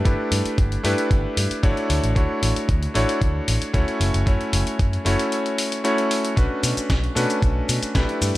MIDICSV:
0, 0, Header, 1, 5, 480
1, 0, Start_track
1, 0, Key_signature, 2, "minor"
1, 0, Tempo, 526316
1, 52, Time_signature, 4, 2, 24, 8
1, 7638, End_track
2, 0, Start_track
2, 0, Title_t, "Electric grand piano"
2, 0, Program_c, 0, 2
2, 41, Note_on_c, 0, 57, 74
2, 46, Note_on_c, 0, 62, 67
2, 50, Note_on_c, 0, 64, 68
2, 55, Note_on_c, 0, 67, 68
2, 60, Note_on_c, 0, 71, 82
2, 739, Note_off_c, 0, 57, 0
2, 741, Note_off_c, 0, 62, 0
2, 743, Note_off_c, 0, 64, 0
2, 746, Note_off_c, 0, 67, 0
2, 748, Note_off_c, 0, 71, 0
2, 761, Note_on_c, 0, 57, 79
2, 765, Note_on_c, 0, 62, 75
2, 770, Note_on_c, 0, 64, 74
2, 774, Note_on_c, 0, 67, 73
2, 780, Note_on_c, 0, 71, 92
2, 1459, Note_off_c, 0, 57, 0
2, 1461, Note_off_c, 0, 62, 0
2, 1463, Note_off_c, 0, 64, 0
2, 1465, Note_off_c, 0, 67, 0
2, 1468, Note_off_c, 0, 71, 0
2, 1486, Note_on_c, 0, 57, 85
2, 1488, Note_on_c, 0, 62, 75
2, 1491, Note_on_c, 0, 64, 76
2, 1493, Note_on_c, 0, 66, 75
2, 1495, Note_on_c, 0, 73, 91
2, 1941, Note_off_c, 0, 57, 0
2, 1942, Note_off_c, 0, 62, 0
2, 1944, Note_off_c, 0, 64, 0
2, 1945, Note_off_c, 0, 66, 0
2, 1946, Note_off_c, 0, 73, 0
2, 1962, Note_on_c, 0, 57, 75
2, 1967, Note_on_c, 0, 62, 70
2, 1971, Note_on_c, 0, 64, 70
2, 1976, Note_on_c, 0, 66, 70
2, 1981, Note_on_c, 0, 73, 85
2, 2659, Note_off_c, 0, 57, 0
2, 2662, Note_off_c, 0, 62, 0
2, 2664, Note_off_c, 0, 64, 0
2, 2666, Note_off_c, 0, 66, 0
2, 2669, Note_off_c, 0, 73, 0
2, 2683, Note_on_c, 0, 57, 83
2, 2688, Note_on_c, 0, 62, 75
2, 2693, Note_on_c, 0, 64, 75
2, 2698, Note_on_c, 0, 66, 75
2, 2701, Note_on_c, 0, 73, 91
2, 3380, Note_off_c, 0, 57, 0
2, 3382, Note_off_c, 0, 62, 0
2, 3385, Note_off_c, 0, 64, 0
2, 3387, Note_off_c, 0, 66, 0
2, 3389, Note_off_c, 0, 73, 0
2, 3406, Note_on_c, 0, 57, 85
2, 3409, Note_on_c, 0, 61, 76
2, 3412, Note_on_c, 0, 64, 76
2, 3414, Note_on_c, 0, 66, 74
2, 3417, Note_on_c, 0, 73, 93
2, 3861, Note_off_c, 0, 57, 0
2, 3863, Note_off_c, 0, 61, 0
2, 3864, Note_off_c, 0, 64, 0
2, 3865, Note_off_c, 0, 66, 0
2, 3867, Note_off_c, 0, 73, 0
2, 3883, Note_on_c, 0, 57, 74
2, 3888, Note_on_c, 0, 61, 70
2, 3893, Note_on_c, 0, 64, 68
2, 3896, Note_on_c, 0, 66, 68
2, 3901, Note_on_c, 0, 73, 82
2, 4580, Note_off_c, 0, 57, 0
2, 4582, Note_off_c, 0, 61, 0
2, 4585, Note_off_c, 0, 64, 0
2, 4586, Note_off_c, 0, 66, 0
2, 4589, Note_off_c, 0, 73, 0
2, 4603, Note_on_c, 0, 57, 79
2, 4608, Note_on_c, 0, 61, 73
2, 4612, Note_on_c, 0, 64, 74
2, 4617, Note_on_c, 0, 66, 74
2, 4621, Note_on_c, 0, 73, 89
2, 5300, Note_off_c, 0, 57, 0
2, 5302, Note_off_c, 0, 61, 0
2, 5304, Note_off_c, 0, 64, 0
2, 5307, Note_off_c, 0, 66, 0
2, 5309, Note_off_c, 0, 73, 0
2, 5326, Note_on_c, 0, 57, 82
2, 5329, Note_on_c, 0, 61, 76
2, 5330, Note_on_c, 0, 64, 75
2, 5333, Note_on_c, 0, 66, 75
2, 5335, Note_on_c, 0, 73, 90
2, 5781, Note_off_c, 0, 57, 0
2, 5783, Note_off_c, 0, 61, 0
2, 5783, Note_off_c, 0, 64, 0
2, 5785, Note_off_c, 0, 66, 0
2, 5786, Note_off_c, 0, 73, 0
2, 5801, Note_on_c, 0, 57, 72
2, 5807, Note_on_c, 0, 61, 69
2, 5811, Note_on_c, 0, 62, 67
2, 5816, Note_on_c, 0, 66, 69
2, 5820, Note_on_c, 0, 71, 82
2, 6499, Note_off_c, 0, 57, 0
2, 6502, Note_off_c, 0, 61, 0
2, 6504, Note_off_c, 0, 62, 0
2, 6506, Note_off_c, 0, 66, 0
2, 6508, Note_off_c, 0, 71, 0
2, 6522, Note_on_c, 0, 57, 81
2, 6526, Note_on_c, 0, 61, 74
2, 6531, Note_on_c, 0, 62, 73
2, 6536, Note_on_c, 0, 66, 76
2, 6540, Note_on_c, 0, 71, 89
2, 7219, Note_off_c, 0, 57, 0
2, 7221, Note_off_c, 0, 61, 0
2, 7224, Note_off_c, 0, 62, 0
2, 7226, Note_off_c, 0, 66, 0
2, 7228, Note_off_c, 0, 71, 0
2, 7247, Note_on_c, 0, 57, 82
2, 7249, Note_on_c, 0, 62, 76
2, 7251, Note_on_c, 0, 64, 77
2, 7254, Note_on_c, 0, 67, 73
2, 7256, Note_on_c, 0, 71, 91
2, 7638, Note_off_c, 0, 57, 0
2, 7638, Note_off_c, 0, 62, 0
2, 7638, Note_off_c, 0, 64, 0
2, 7638, Note_off_c, 0, 67, 0
2, 7638, Note_off_c, 0, 71, 0
2, 7638, End_track
3, 0, Start_track
3, 0, Title_t, "Picked electric bass"
3, 0, Program_c, 1, 34
3, 51, Note_on_c, 1, 31, 93
3, 129, Note_off_c, 1, 31, 0
3, 288, Note_on_c, 1, 43, 85
3, 368, Note_off_c, 1, 43, 0
3, 530, Note_on_c, 1, 31, 92
3, 685, Note_off_c, 1, 31, 0
3, 770, Note_on_c, 1, 43, 77
3, 849, Note_off_c, 1, 43, 0
3, 1010, Note_on_c, 1, 31, 94
3, 1130, Note_off_c, 1, 31, 0
3, 1251, Note_on_c, 1, 43, 93
3, 1329, Note_off_c, 1, 43, 0
3, 1491, Note_on_c, 1, 31, 92
3, 1569, Note_off_c, 1, 31, 0
3, 1732, Note_on_c, 1, 38, 92
3, 1810, Note_off_c, 1, 38, 0
3, 1855, Note_on_c, 1, 33, 88
3, 1928, Note_off_c, 1, 33, 0
3, 1972, Note_on_c, 1, 38, 93
3, 2050, Note_off_c, 1, 38, 0
3, 2213, Note_on_c, 1, 33, 85
3, 2290, Note_off_c, 1, 33, 0
3, 2452, Note_on_c, 1, 38, 93
3, 2605, Note_off_c, 1, 38, 0
3, 2693, Note_on_c, 1, 33, 80
3, 2770, Note_off_c, 1, 33, 0
3, 2933, Note_on_c, 1, 38, 92
3, 3086, Note_off_c, 1, 38, 0
3, 3174, Note_on_c, 1, 33, 89
3, 3251, Note_off_c, 1, 33, 0
3, 3413, Note_on_c, 1, 38, 92
3, 3490, Note_off_c, 1, 38, 0
3, 3652, Note_on_c, 1, 30, 91
3, 3730, Note_off_c, 1, 30, 0
3, 3776, Note_on_c, 1, 30, 89
3, 3849, Note_off_c, 1, 30, 0
3, 3893, Note_on_c, 1, 42, 94
3, 3970, Note_off_c, 1, 42, 0
3, 4132, Note_on_c, 1, 30, 86
3, 4210, Note_off_c, 1, 30, 0
3, 4373, Note_on_c, 1, 42, 91
3, 4526, Note_off_c, 1, 42, 0
3, 4611, Note_on_c, 1, 30, 80
3, 4690, Note_off_c, 1, 30, 0
3, 5812, Note_on_c, 1, 35, 95
3, 5890, Note_off_c, 1, 35, 0
3, 6049, Note_on_c, 1, 47, 84
3, 6128, Note_off_c, 1, 47, 0
3, 6292, Note_on_c, 1, 35, 91
3, 6445, Note_off_c, 1, 35, 0
3, 6531, Note_on_c, 1, 47, 77
3, 6609, Note_off_c, 1, 47, 0
3, 6771, Note_on_c, 1, 35, 95
3, 6925, Note_off_c, 1, 35, 0
3, 7014, Note_on_c, 1, 47, 91
3, 7091, Note_off_c, 1, 47, 0
3, 7251, Note_on_c, 1, 35, 91
3, 7329, Note_off_c, 1, 35, 0
3, 7494, Note_on_c, 1, 43, 90
3, 7571, Note_off_c, 1, 43, 0
3, 7638, End_track
4, 0, Start_track
4, 0, Title_t, "Muted picked electric bass strokes"
4, 412, Note_on_c, 9, 29, 40
4, 503, Note_off_c, 9, 29, 0
4, 1136, Note_on_c, 9, 29, 39
4, 1227, Note_off_c, 9, 29, 0
4, 1375, Note_on_c, 9, 29, 41
4, 1466, Note_off_c, 9, 29, 0
4, 2336, Note_on_c, 9, 29, 40
4, 2428, Note_off_c, 9, 29, 0
4, 3298, Note_on_c, 9, 29, 41
4, 3389, Note_off_c, 9, 29, 0
4, 4256, Note_on_c, 9, 29, 41
4, 4348, Note_off_c, 9, 29, 0
4, 6175, Note_on_c, 9, 29, 41
4, 6266, Note_off_c, 9, 29, 0
4, 7136, Note_on_c, 9, 29, 41
4, 7228, Note_off_c, 9, 29, 0
4, 7638, End_track
5, 0, Start_track
5, 0, Title_t, "Drums"
5, 50, Note_on_c, 9, 36, 103
5, 50, Note_on_c, 9, 42, 60
5, 141, Note_off_c, 9, 36, 0
5, 141, Note_off_c, 9, 42, 0
5, 290, Note_on_c, 9, 46, 91
5, 381, Note_off_c, 9, 46, 0
5, 415, Note_on_c, 9, 42, 48
5, 506, Note_off_c, 9, 42, 0
5, 530, Note_on_c, 9, 36, 107
5, 531, Note_on_c, 9, 42, 59
5, 621, Note_off_c, 9, 36, 0
5, 622, Note_off_c, 9, 42, 0
5, 657, Note_on_c, 9, 42, 32
5, 748, Note_off_c, 9, 42, 0
5, 772, Note_on_c, 9, 46, 78
5, 863, Note_off_c, 9, 46, 0
5, 895, Note_on_c, 9, 42, 46
5, 987, Note_off_c, 9, 42, 0
5, 1010, Note_on_c, 9, 36, 104
5, 1012, Note_on_c, 9, 42, 62
5, 1102, Note_off_c, 9, 36, 0
5, 1103, Note_off_c, 9, 42, 0
5, 1252, Note_on_c, 9, 46, 94
5, 1343, Note_off_c, 9, 46, 0
5, 1377, Note_on_c, 9, 42, 49
5, 1468, Note_off_c, 9, 42, 0
5, 1491, Note_on_c, 9, 36, 106
5, 1492, Note_on_c, 9, 42, 58
5, 1582, Note_off_c, 9, 36, 0
5, 1584, Note_off_c, 9, 42, 0
5, 1617, Note_on_c, 9, 42, 32
5, 1708, Note_off_c, 9, 42, 0
5, 1732, Note_on_c, 9, 46, 83
5, 1823, Note_off_c, 9, 46, 0
5, 1857, Note_on_c, 9, 42, 48
5, 1948, Note_off_c, 9, 42, 0
5, 1971, Note_on_c, 9, 36, 106
5, 1974, Note_on_c, 9, 42, 62
5, 2063, Note_off_c, 9, 36, 0
5, 2066, Note_off_c, 9, 42, 0
5, 2214, Note_on_c, 9, 46, 92
5, 2305, Note_off_c, 9, 46, 0
5, 2338, Note_on_c, 9, 42, 48
5, 2430, Note_off_c, 9, 42, 0
5, 2452, Note_on_c, 9, 36, 102
5, 2453, Note_on_c, 9, 42, 62
5, 2543, Note_off_c, 9, 36, 0
5, 2544, Note_off_c, 9, 42, 0
5, 2577, Note_on_c, 9, 42, 34
5, 2668, Note_off_c, 9, 42, 0
5, 2693, Note_on_c, 9, 46, 81
5, 2784, Note_off_c, 9, 46, 0
5, 2819, Note_on_c, 9, 42, 48
5, 2910, Note_off_c, 9, 42, 0
5, 2932, Note_on_c, 9, 36, 102
5, 2934, Note_on_c, 9, 42, 62
5, 3024, Note_off_c, 9, 36, 0
5, 3026, Note_off_c, 9, 42, 0
5, 3173, Note_on_c, 9, 46, 94
5, 3265, Note_off_c, 9, 46, 0
5, 3298, Note_on_c, 9, 42, 51
5, 3390, Note_off_c, 9, 42, 0
5, 3412, Note_on_c, 9, 36, 102
5, 3415, Note_on_c, 9, 42, 64
5, 3503, Note_off_c, 9, 36, 0
5, 3506, Note_off_c, 9, 42, 0
5, 3538, Note_on_c, 9, 42, 34
5, 3630, Note_off_c, 9, 42, 0
5, 3655, Note_on_c, 9, 46, 82
5, 3746, Note_off_c, 9, 46, 0
5, 3778, Note_on_c, 9, 42, 52
5, 3870, Note_off_c, 9, 42, 0
5, 3893, Note_on_c, 9, 36, 105
5, 3895, Note_on_c, 9, 42, 64
5, 3984, Note_off_c, 9, 36, 0
5, 3986, Note_off_c, 9, 42, 0
5, 4019, Note_on_c, 9, 42, 35
5, 4110, Note_off_c, 9, 42, 0
5, 4132, Note_on_c, 9, 46, 97
5, 4224, Note_off_c, 9, 46, 0
5, 4258, Note_on_c, 9, 42, 52
5, 4349, Note_off_c, 9, 42, 0
5, 4372, Note_on_c, 9, 36, 104
5, 4374, Note_on_c, 9, 42, 61
5, 4464, Note_off_c, 9, 36, 0
5, 4465, Note_off_c, 9, 42, 0
5, 4499, Note_on_c, 9, 42, 35
5, 4590, Note_off_c, 9, 42, 0
5, 4614, Note_on_c, 9, 46, 82
5, 4705, Note_off_c, 9, 46, 0
5, 4738, Note_on_c, 9, 42, 51
5, 4829, Note_off_c, 9, 42, 0
5, 4853, Note_on_c, 9, 42, 64
5, 4945, Note_off_c, 9, 42, 0
5, 4978, Note_on_c, 9, 42, 34
5, 5069, Note_off_c, 9, 42, 0
5, 5093, Note_on_c, 9, 46, 91
5, 5184, Note_off_c, 9, 46, 0
5, 5217, Note_on_c, 9, 42, 54
5, 5308, Note_off_c, 9, 42, 0
5, 5333, Note_on_c, 9, 42, 63
5, 5424, Note_off_c, 9, 42, 0
5, 5457, Note_on_c, 9, 42, 35
5, 5548, Note_off_c, 9, 42, 0
5, 5572, Note_on_c, 9, 46, 85
5, 5663, Note_off_c, 9, 46, 0
5, 5696, Note_on_c, 9, 42, 54
5, 5787, Note_off_c, 9, 42, 0
5, 5812, Note_on_c, 9, 36, 108
5, 5813, Note_on_c, 9, 42, 62
5, 5814, Note_on_c, 9, 69, 30
5, 5903, Note_off_c, 9, 36, 0
5, 5904, Note_off_c, 9, 42, 0
5, 5906, Note_off_c, 9, 69, 0
5, 6051, Note_on_c, 9, 46, 102
5, 6053, Note_on_c, 9, 69, 72
5, 6142, Note_off_c, 9, 46, 0
5, 6144, Note_off_c, 9, 69, 0
5, 6177, Note_on_c, 9, 42, 52
5, 6179, Note_on_c, 9, 69, 42
5, 6268, Note_off_c, 9, 42, 0
5, 6270, Note_off_c, 9, 69, 0
5, 6291, Note_on_c, 9, 36, 109
5, 6294, Note_on_c, 9, 38, 114
5, 6294, Note_on_c, 9, 42, 63
5, 6295, Note_on_c, 9, 69, 32
5, 6382, Note_off_c, 9, 36, 0
5, 6385, Note_off_c, 9, 38, 0
5, 6385, Note_off_c, 9, 42, 0
5, 6386, Note_off_c, 9, 69, 0
5, 6418, Note_on_c, 9, 42, 35
5, 6509, Note_off_c, 9, 42, 0
5, 6535, Note_on_c, 9, 46, 84
5, 6537, Note_on_c, 9, 69, 73
5, 6626, Note_off_c, 9, 46, 0
5, 6628, Note_off_c, 9, 69, 0
5, 6658, Note_on_c, 9, 42, 50
5, 6659, Note_on_c, 9, 69, 40
5, 6749, Note_off_c, 9, 42, 0
5, 6750, Note_off_c, 9, 69, 0
5, 6771, Note_on_c, 9, 36, 110
5, 6773, Note_on_c, 9, 42, 63
5, 6775, Note_on_c, 9, 69, 31
5, 6862, Note_off_c, 9, 36, 0
5, 6865, Note_off_c, 9, 42, 0
5, 6866, Note_off_c, 9, 69, 0
5, 7013, Note_on_c, 9, 46, 98
5, 7015, Note_on_c, 9, 69, 73
5, 7105, Note_off_c, 9, 46, 0
5, 7106, Note_off_c, 9, 69, 0
5, 7137, Note_on_c, 9, 42, 53
5, 7139, Note_on_c, 9, 69, 43
5, 7228, Note_off_c, 9, 42, 0
5, 7230, Note_off_c, 9, 69, 0
5, 7251, Note_on_c, 9, 36, 112
5, 7254, Note_on_c, 9, 42, 64
5, 7255, Note_on_c, 9, 38, 114
5, 7255, Note_on_c, 9, 69, 31
5, 7342, Note_off_c, 9, 36, 0
5, 7345, Note_off_c, 9, 42, 0
5, 7346, Note_off_c, 9, 38, 0
5, 7347, Note_off_c, 9, 69, 0
5, 7378, Note_on_c, 9, 42, 34
5, 7469, Note_off_c, 9, 42, 0
5, 7495, Note_on_c, 9, 46, 88
5, 7496, Note_on_c, 9, 69, 76
5, 7586, Note_off_c, 9, 46, 0
5, 7587, Note_off_c, 9, 69, 0
5, 7638, End_track
0, 0, End_of_file